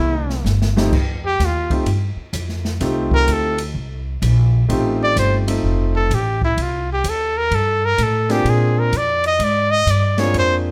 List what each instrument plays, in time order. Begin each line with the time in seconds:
Already playing: upright bass C2, baritone saxophone E2, trumpet E4
0.30 snare
0.44 upright bass G1, snare, hi-hat pedal
0.62 snare
0.76 grand piano F2 A3 C4 D#4 G4, snare
0.92 upright bass F2, kick, crash
1.26 trumpet G4
1.39 upright bass D#2, kick, snare, hi-hat pedal, ride
1.45 trumpet F4
1.70 grand piano A3 C4 D#4 F4 G4, kick, ride
1.86 upright bass G2, kick, ride
2.16 muted upright bass stroke
2.33 upright bass F2, kick, hi-hat pedal, ride
2.49 snare
2.65 snare
2.80 upright bass C2, grand piano A3 C4 D#4 F4 G4, kick, snare, ride
3.11 trumpet A#4, kick
3.27 upright bass D2, kick, hi-hat pedal, ride
3.32 trumpet A4
3.58 ride
3.74 upright bass C2, kick
4.22 upright bass A#1, kick, hi-hat pedal, ride
4.69 upright bass A1, grand piano A3 C4 D#4 F4 G4, kick, ride
5.03 trumpet D5
5.16 upright bass G1, trumpet C5, kick, hi-hat pedal, ride
5.47 grand piano A3 C4 D#4 F4 A4, ride
5.63 upright bass F1, kick
5.96 trumpet A4
6.10 upright bass A1, kick, hi-hat pedal, ride
6.14 trumpet G4
6.42 trumpet E4, kick
6.57 upright bass C2, kick, ride
6.62 trumpet F4
6.93 trumpet G4
7.04 upright bass D#2, kick, hi-hat pedal, ride
7.09 trumpet A4
7.37 trumpet A#4
7.51 upright bass G2, trumpet A4, kick, ride
7.85 trumpet A#4
7.98 upright bass A2, kick, hi-hat pedal, ride
8.03 trumpet A4
8.29 grand piano A#3 C4 D4 F4 G#4, trumpet G4, snare, ride
8.45 upright bass A#2, kick, ride
8.49 trumpet G#4
8.79 trumpet A#4
8.92 upright bass F2, kick, hi-hat pedal, ride
8.97 trumpet D5
9.24 trumpet D#5, ride
9.39 upright bass G#2, kick, ride
9.44 trumpet D5
9.71 trumpet D#5
9.86 upright bass G2, trumpet D5, kick, hi-hat pedal, ride
10.18 grand piano A#3 C4 D4 F4 G#4, trumpet C#5, snare, ride
10.34 upright bass F2, kick, ride
10.38 trumpet C5